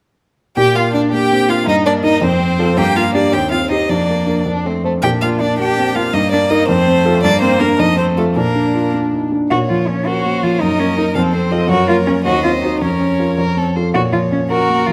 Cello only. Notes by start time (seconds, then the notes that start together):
0.57 G4
0.75 F4
0.94 D4
1.12 G4
1.49 F4
1.68 D#4
1.86 D4
2.04 D#4
2.22 C4
2.78 G4
2.96 F4
3.14 D4
3.32 G4
3.51 F4
3.69 D#4
3.89 D4
5.03 G4
5.22 F4
5.41 D4
5.59 G4
5.96 F4
6.14 D#4
6.33 D4
6.51 D#4
6.68 C4
7.24 D4
7.42 C4
7.60 A#3
7.79 D#4
7.98 C4
8.18 A3
8.36 A#3
9.51 F#4
9.70 F4
9.88 C#4
10.06 F#4
10.43 F4
10.60 D#4
10.79 C#4
10.98 D#4
11.16 C4
11.70 F#4
11.88 F4
12.07 C#4
12.25 F#4
12.44 F4
12.62 D#4
12.81 C#4
13.94 F#4
14.13 F4
14.31 C#4
14.49 F#4
14.86 F4